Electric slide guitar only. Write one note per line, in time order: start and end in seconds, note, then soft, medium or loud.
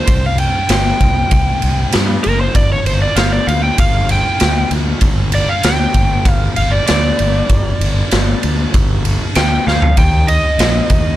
0.00 0.24 C5 medium
0.26 0.40 F5 medium
0.40 0.70 G5 medium
0.72 1.91 G5 medium
2.24 2.39 A#4 loud
2.41 2.55 C5 medium
2.56 2.71 D5 medium
2.72 2.86 C#5 medium
2.87 3.01 C5 medium
3.02 3.17 D5 medium
3.16 3.32 F5 medium
3.32 3.47 D5 medium
3.47 3.63 F5 medium
3.64 3.78 G5 medium
3.80 4.09 F5 medium
4.12 4.71 G5 medium
5.35 5.49 D5 medium
5.49 5.64 F5 medium
5.66 6.31 G5 loud
6.31 6.55 F5 loud
6.57 6.72 F5 medium
6.72 6.86 D5 medium
6.87 8.69 D5 loud
9.37 9.66 G5 loud
9.68 9.97 F5 medium
9.98 10.28 G5 medium
10.28 11.16 D#5 loud